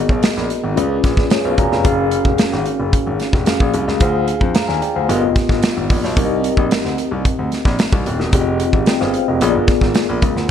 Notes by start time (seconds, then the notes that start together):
Already playing: B3 F#4 G#4 A#4 D#5
0.09 B1, kick
0.23 snare, closed hi-hat
0.37 A#1, snare
0.50 closed hi-hat
0.64 G#1
0.76 C#2 C#4 F4 G#4 B4 D5, closed hi-hat
1.04 A#1, kick, snare, closed hi-hat
1.17 kick, snare
1.30 G#4 C#5, snare, closed hi-hat
1.45 B1 B4 F5
1.58 E1 D5 G#5 A#5, kick, closed hi-hat
1.72 F1 F5 B5, snare
1.84 F#1 C#4 F#4 G#4 A#4 F5, kick, closed hi-hat
2.11 closed hi-hat
2.25 F1, kick
2.38 snare, closed hi-hat
2.53 G#1, snare
2.66 closed hi-hat
2.80 F#1
2.93 kick, closed hi-hat
3.07 G#1
3.20 snare, closed hi-hat
3.33 F1, kick, snare
3.46 C#4 F#4 G#4 A#4 F5, snare, closed hi-hat
3.60 A#1, kick
3.74 C2, closed hi-hat
3.88 C#2, snare
4.00 D2 D4 F4 G#4 C5 F5, kick, closed hi-hat
4.28 closed hi-hat
4.41 F2, kick
4.55 F5 A#5, snare, closed hi-hat
4.68 D#2 D5 G#5, snare
4.82 D5 G5, closed hi-hat
4.96 D2 C5 F5
5.08 G1 B3 F4 G4 A#4 D#5, closed hi-hat
5.23 F1
5.36 kick, snare, closed hi-hat
5.49 G1, kick, snare
5.63 snare, closed hi-hat
5.77 G#1
5.90 A#1, kick, open hi-hat
6.04 B1, snare
6.16 C2 C4 D#4 G4 A#4 D5, kick, closed hi-hat
6.25 D#5
6.44 closed hi-hat
6.57 A#1, kick
6.71 snare, closed hi-hat
6.84 D2, snare
6.98 closed hi-hat
7.11 C2
7.25 kick, closed hi-hat
7.39 D2
7.52 snare, closed hi-hat
7.65 A#1, kick, snare
7.79 snare, closed hi-hat
7.93 C2, kick
8.06 D#1, closed hi-hat
8.20 E1, snare
8.31 F1 C4 F4 G4 G#4 D5, kick, closed hi-hat
8.41 D#5
8.60 closed hi-hat
8.73 G#1, kick
8.86 D5 G5, snare, closed hi-hat
9.00 G1 C5 F5, snare
9.14 closed hi-hat
9.28 F1 A#4 D#5
9.40 A#1 B3 F4 G#4 A#4 C#5, closed hi-hat
9.49 D5
9.55 G1
9.68 kick, snare, closed hi-hat
9.81 G#1, kick, snare
9.95 snare, closed hi-hat
10.09 A#1
10.22 C#2, kick, closed hi-hat
10.36 D2, snare